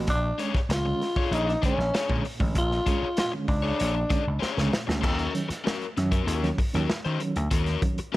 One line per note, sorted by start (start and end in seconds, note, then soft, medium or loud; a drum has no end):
0.07 0.31 A#1 loud
0.07 0.22 A#2 medium
0.07 0.41 D4 loud
0.07 kick loud
0.07 closed hi-hat medium
0.38 0.53 G#3 medium
0.38 0.53 C#4 medium
0.38 0.57 D4 medium
0.38 0.58 G#4 medium
0.38 0.58 C#5 medium
0.38 closed hi-hat medium
0.55 muted slap bass stroke soft
0.55 kick loud
0.55 snare soft
0.69 0.92 C#2 loud
0.69 0.85 A#2 medium
0.69 1.35 F4 loud
0.69 muted overdriven electric guitar stroke soft
0.69 snare loud
0.69 closed hi-hat medium
0.85 1.00 D3 medium
0.85 1.00 G#3 medium
0.85 1.00 C#4 medium
0.85 muted overdriven electric guitar stroke soft
1.01 1.07 G#3 soft
1.01 1.07 C#4 soft
1.01 snare soft
1.01 open hi-hat soft
1.16 1.32 D4 medium
1.16 1.33 G#4 medium
1.16 1.33 C#5 medium
1.16 kick medium
1.31 1.54 A#1 loud
1.31 1.51 D4 medium
1.31 1.63 D#4 medium
1.31 1.48 G#4 medium
1.31 1.47 C#5 medium
1.31 closed hi-hat medium
1.48 muted overdriven electric guitar stroke soft
1.48 snare soft
1.62 1.77 D3 medium
1.62 1.77 G#3 medium
1.62 1.77 C#4 loud
1.62 2.22 C#4 medium
1.62 1.77 D4 medium
1.62 1.78 G#4 medium
1.62 1.78 D5 medium
1.62 kick loud
1.62 closed hi-hat medium
1.78 1.89 A#1 medium
1.78 muted overdriven electric guitar stroke soft
1.78 snare soft
1.94 2.22 D4 medium
1.94 2.23 G#4 medium
1.94 2.23 C#5 medium
1.94 snare loud
1.94 closed hi-hat medium
2.09 2.21 A#2 medium
2.09 2.23 D3 medium
2.09 2.23 G#3 medium
2.09 2.23 C#4 medium
2.09 kick medium
2.24 2.39 A#2 medium
2.24 muted overdriven electric guitar stroke soft
2.24 open hi-hat medium
2.40 2.56 A1 medium
2.40 2.54 D3 medium
2.40 2.54 G#3 medium
2.40 2.54 C#4 medium
2.40 muted overdriven electric guitar stroke soft
2.40 kick loud
2.55 2.79 A#1 loud
2.55 2.70 A#2 medium
2.55 3.15 F4 loud
2.55 kick loud
2.55 closed hi-hat loud
2.71 snare soft
2.86 3.01 G#3 medium
2.86 3.01 C#4 medium
2.86 3.05 D4 medium
2.86 3.06 G#4 medium
2.86 3.06 C#5 medium
2.86 kick loud
2.86 closed hi-hat medium
3.03 muted slap bass stroke soft
3.17 3.32 A#2 medium
3.17 3.33 F4 loud
3.17 muted overdriven electric guitar stroke soft
3.17 snare loud
3.17 closed hi-hat medium
3.32 3.47 D3 medium
3.32 3.48 G#3 medium
3.32 3.48 C#4 medium
3.32 muted overdriven electric guitar stroke soft
3.48 3.71 C#2 medium
3.48 4.37 D4 medium
3.48 kick medium
3.48 open hi-hat soft
3.62 3.78 D4 medium
3.62 3.78 G#4 medium
3.62 3.79 C#5 medium
3.79 4.03 A#1 loud
3.79 3.98 D4 medium
3.79 3.95 G#4 medium
3.79 3.94 C#5 medium
3.79 closed hi-hat loud
3.95 muted overdriven electric guitar stroke medium
4.10 4.24 D3 medium
4.10 4.25 G#3 medium
4.10 4.25 C#4 medium
4.10 4.25 D4 medium
4.10 4.24 G#4 medium
4.10 4.24 D5 medium
4.10 kick loud
4.10 closed hi-hat medium
4.24 4.38 C#2 medium
4.24 muted overdriven electric guitar stroke soft
4.39 4.51 C#4 medium
4.39 4.52 G4 loud
4.39 4.53 C5 loud
4.39 muted slap bass stroke medium
4.39 snare medium
4.51 4.69 D4 medium
4.51 4.69 G#4 loud
4.51 4.69 C#5 loud
4.57 4.69 C#2 medium
4.57 4.71 D3 medium
4.57 4.71 G#3 medium
4.57 4.71 C#4 medium
4.57 snare medium
4.72 4.87 A#2 medium
4.72 muted overdriven electric guitar stroke soft
4.72 snare loud
4.87 4.99 D2 medium
4.87 5.02 D3 medium
4.87 5.02 G#3 medium
4.87 5.02 C#4 medium
4.87 muted overdriven electric guitar stroke soft
4.87 snare medium
5.01 5.26 D#2 loud
5.01 5.13 C4 loud
5.01 5.14 F4 medium
5.01 5.15 A4 medium
5.01 kick loud
5.01 crash medium
5.13 5.31 C#4 loud
5.13 5.31 F#4 medium
5.13 5.31 A#4 medium
5.19 5.25 F#3 soft
5.19 5.25 C#4 soft
5.19 closed hi-hat soft
5.35 5.49 D#3 medium
5.35 5.49 F#3 medium
5.35 5.49 C#4 medium
5.35 closed hi-hat medium
5.48 muted overdriven electric guitar stroke medium
5.48 muted slap bass stroke soft
5.48 snare soft
5.48 closed hi-hat medium
5.64 5.84 C#4 medium
5.64 5.84 F#4 loud
5.64 5.84 A#4 medium
5.64 snare loud
5.81 closed hi-hat soft
5.97 6.20 F#2 medium
5.97 6.11 D#3 medium
5.97 6.11 F#3 medium
5.97 6.11 C#4 medium
5.97 muted overdriven electric guitar stroke soft
5.97 snare soft
5.97 closed hi-hat medium
6.11 6.25 C#4 soft
6.11 6.26 F#4 medium
6.11 6.26 A#4 medium
6.11 kick loud
6.11 closed hi-hat medium
6.26 6.50 D#2 loud
6.26 6.47 C#4 medium
6.26 6.47 F#4 medium
6.26 6.47 A#4 medium
6.26 closed hi-hat loud
6.43 6.57 D#3 medium
6.43 6.57 F#3 medium
6.43 6.57 C#4 medium
6.43 snare soft
6.43 closed hi-hat soft
6.58 muted overdriven electric guitar stroke soft
6.58 kick loud
6.58 open hi-hat medium
6.73 6.86 D#2 medium
6.73 6.88 D#3 medium
6.73 6.88 F#3 medium
6.73 6.88 C#4 medium
6.73 6.90 C#4 soft
6.73 6.90 F#4 medium
6.73 6.89 A#4 medium
6.73 snare soft
6.73 closed hi-hat medium
6.90 muted overdriven electric guitar stroke soft
6.90 snare loud
7.05 7.17 D#3 medium
7.05 7.20 C#4 medium
7.05 7.20 F#4 medium
7.05 7.22 C5 medium
7.05 closed hi-hat soft
7.20 7.34 D#3 medium
7.20 7.34 F#3 medium
7.20 7.35 C#4 medium
7.20 muted overdriven electric guitar stroke soft
7.20 closed hi-hat medium
7.36 7.47 D2 medium
7.36 7.42 F#3 soft
7.36 7.42 C#4 soft
7.36 muted overdriven electric guitar stroke soft
7.36 closed hi-hat medium
7.51 7.74 D#2 loud
7.51 7.63 C4 medium
7.51 7.64 F4 loud
7.51 7.65 A4 loud
7.51 kick loud
7.51 closed hi-hat loud
7.63 7.80 C#4 medium
7.63 7.80 F#4 loud
7.63 7.80 A#4 loud
7.63 closed hi-hat soft
7.67 7.73 F#3 soft
7.67 7.73 C#4 soft
7.67 snare soft
7.82 7.96 D#3 medium
7.82 7.96 F#3 medium
7.82 7.97 C#4 medium
7.82 kick loud
7.82 closed hi-hat medium
7.98 muted slap bass stroke soft
7.98 muted overdriven electric guitar stroke medium
7.98 closed hi-hat medium
8.12 8.17 C#4 medium
8.12 8.17 F#4 medium